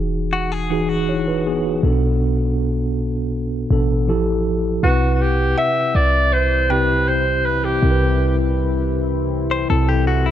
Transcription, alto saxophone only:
0, 0, Header, 1, 2, 480
1, 0, Start_track
1, 0, Tempo, 750000
1, 1169, Time_signature, 4, 2, 24, 8
1, 6598, End_track
2, 0, Start_track
2, 0, Title_t, "Alto saxophone"
2, 0, Program_c, 0, 65
2, 3093, Note_on_c, 0, 66, 93
2, 3287, Note_off_c, 0, 66, 0
2, 3287, Note_on_c, 0, 66, 63
2, 3332, Note_on_c, 0, 67, 89
2, 3342, Note_off_c, 0, 66, 0
2, 3568, Note_off_c, 0, 67, 0
2, 3571, Note_on_c, 0, 76, 104
2, 3811, Note_on_c, 0, 74, 105
2, 3821, Note_off_c, 0, 76, 0
2, 4052, Note_on_c, 0, 72, 106
2, 4062, Note_off_c, 0, 74, 0
2, 4294, Note_on_c, 0, 71, 91
2, 4303, Note_off_c, 0, 72, 0
2, 4533, Note_on_c, 0, 72, 97
2, 4542, Note_off_c, 0, 71, 0
2, 4772, Note_on_c, 0, 71, 93
2, 4782, Note_off_c, 0, 72, 0
2, 4893, Note_on_c, 0, 67, 82
2, 4903, Note_off_c, 0, 71, 0
2, 5371, Note_off_c, 0, 67, 0
2, 6598, End_track
0, 0, End_of_file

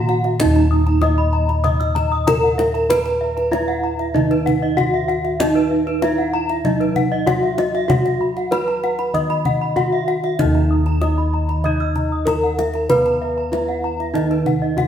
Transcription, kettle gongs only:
0, 0, Header, 1, 2, 480
1, 0, Start_track
1, 0, Tempo, 625000
1, 305, Time_signature, 4, 2, 24, 8
1, 11425, End_track
2, 0, Start_track
2, 0, Title_t, "Kettle gongs"
2, 0, Program_c, 0, 14
2, 0, Note_on_c, 0, 46, 83
2, 307, Note_on_c, 0, 63, 63
2, 345, Note_on_c, 0, 39, 103
2, 754, Note_off_c, 0, 46, 0
2, 785, Note_on_c, 0, 64, 40
2, 846, Note_off_c, 0, 64, 0
2, 1715, Note_off_c, 0, 63, 0
2, 1746, Note_on_c, 0, 64, 46
2, 1808, Note_off_c, 0, 64, 0
2, 2223, Note_on_c, 0, 71, 66
2, 2703, Note_on_c, 0, 64, 39
2, 2764, Note_off_c, 0, 64, 0
2, 3174, Note_off_c, 0, 39, 0
2, 3182, Note_on_c, 0, 51, 76
2, 3633, Note_off_c, 0, 71, 0
2, 3665, Note_on_c, 0, 64, 51
2, 3726, Note_off_c, 0, 64, 0
2, 4148, Note_on_c, 0, 63, 69
2, 4593, Note_off_c, 0, 51, 0
2, 4626, Note_on_c, 0, 64, 34
2, 4688, Note_off_c, 0, 64, 0
2, 5102, Note_on_c, 0, 54, 81
2, 5556, Note_off_c, 0, 63, 0
2, 5582, Note_on_c, 0, 64, 47
2, 5643, Note_off_c, 0, 64, 0
2, 6061, Note_on_c, 0, 66, 65
2, 6513, Note_off_c, 0, 54, 0
2, 6541, Note_on_c, 0, 64, 36
2, 6602, Note_off_c, 0, 64, 0
2, 7016, Note_on_c, 0, 51, 69
2, 7472, Note_off_c, 0, 66, 0
2, 7499, Note_on_c, 0, 64, 43
2, 7560, Note_off_c, 0, 64, 0
2, 7980, Note_on_c, 0, 63, 67
2, 8018, Note_on_c, 0, 39, 93
2, 8430, Note_off_c, 0, 51, 0
2, 8460, Note_on_c, 0, 64, 36
2, 8521, Note_off_c, 0, 64, 0
2, 9392, Note_off_c, 0, 63, 0
2, 9426, Note_on_c, 0, 64, 48
2, 9488, Note_off_c, 0, 64, 0
2, 9907, Note_on_c, 0, 71, 72
2, 10385, Note_on_c, 0, 64, 41
2, 10446, Note_off_c, 0, 64, 0
2, 10851, Note_off_c, 0, 39, 0
2, 10864, Note_on_c, 0, 51, 71
2, 11315, Note_off_c, 0, 71, 0
2, 11341, Note_on_c, 0, 64, 51
2, 11403, Note_off_c, 0, 64, 0
2, 11425, Note_off_c, 0, 51, 0
2, 11425, End_track
0, 0, End_of_file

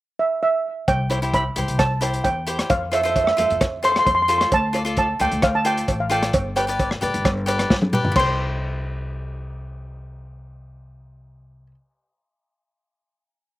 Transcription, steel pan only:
0, 0, Header, 1, 2, 480
1, 0, Start_track
1, 0, Key_signature, 0, "major"
1, 0, Tempo, 455581
1, 928, Time_signature, 4, 2, 24, 8
1, 14321, End_track
2, 0, Start_track
2, 0, Title_t, "Steel pan"
2, 0, Program_c, 0, 114
2, 204, Note_on_c, 0, 76, 68
2, 429, Note_off_c, 0, 76, 0
2, 449, Note_on_c, 0, 76, 75
2, 896, Note_off_c, 0, 76, 0
2, 927, Note_on_c, 0, 79, 80
2, 1416, Note_on_c, 0, 83, 88
2, 1423, Note_off_c, 0, 79, 0
2, 1884, Note_on_c, 0, 81, 83
2, 1907, Note_off_c, 0, 83, 0
2, 2361, Note_on_c, 0, 79, 74
2, 2381, Note_off_c, 0, 81, 0
2, 2844, Note_on_c, 0, 77, 77
2, 2859, Note_off_c, 0, 79, 0
2, 3090, Note_on_c, 0, 76, 61
2, 3093, Note_off_c, 0, 77, 0
2, 3166, Note_off_c, 0, 76, 0
2, 3177, Note_on_c, 0, 76, 47
2, 3248, Note_off_c, 0, 76, 0
2, 3262, Note_on_c, 0, 76, 55
2, 3315, Note_off_c, 0, 76, 0
2, 3328, Note_on_c, 0, 76, 49
2, 3402, Note_off_c, 0, 76, 0
2, 3415, Note_on_c, 0, 76, 56
2, 3474, Note_off_c, 0, 76, 0
2, 3487, Note_on_c, 0, 76, 53
2, 3553, Note_off_c, 0, 76, 0
2, 3566, Note_on_c, 0, 76, 55
2, 3635, Note_off_c, 0, 76, 0
2, 3648, Note_on_c, 0, 76, 52
2, 3719, Note_off_c, 0, 76, 0
2, 4055, Note_on_c, 0, 84, 86
2, 4118, Note_off_c, 0, 84, 0
2, 4131, Note_on_c, 0, 84, 66
2, 4192, Note_off_c, 0, 84, 0
2, 4205, Note_on_c, 0, 84, 76
2, 4261, Note_off_c, 0, 84, 0
2, 4273, Note_on_c, 0, 84, 66
2, 4358, Note_off_c, 0, 84, 0
2, 4371, Note_on_c, 0, 84, 76
2, 4437, Note_off_c, 0, 84, 0
2, 4450, Note_on_c, 0, 84, 68
2, 4512, Note_off_c, 0, 84, 0
2, 4525, Note_on_c, 0, 84, 70
2, 4605, Note_off_c, 0, 84, 0
2, 4616, Note_on_c, 0, 84, 69
2, 4690, Note_off_c, 0, 84, 0
2, 4781, Note_on_c, 0, 81, 85
2, 5241, Note_off_c, 0, 81, 0
2, 5253, Note_on_c, 0, 81, 81
2, 5493, Note_on_c, 0, 79, 84
2, 5496, Note_off_c, 0, 81, 0
2, 5724, Note_on_c, 0, 77, 76
2, 5736, Note_off_c, 0, 79, 0
2, 5849, Note_on_c, 0, 81, 79
2, 5853, Note_off_c, 0, 77, 0
2, 5964, Note_on_c, 0, 79, 77
2, 5967, Note_off_c, 0, 81, 0
2, 6303, Note_off_c, 0, 79, 0
2, 6324, Note_on_c, 0, 77, 63
2, 6376, Note_off_c, 0, 77, 0
2, 6443, Note_on_c, 0, 79, 82
2, 6907, Note_off_c, 0, 79, 0
2, 6919, Note_on_c, 0, 79, 66
2, 7837, Note_off_c, 0, 79, 0
2, 8601, Note_on_c, 0, 84, 76
2, 12339, Note_off_c, 0, 84, 0
2, 14321, End_track
0, 0, End_of_file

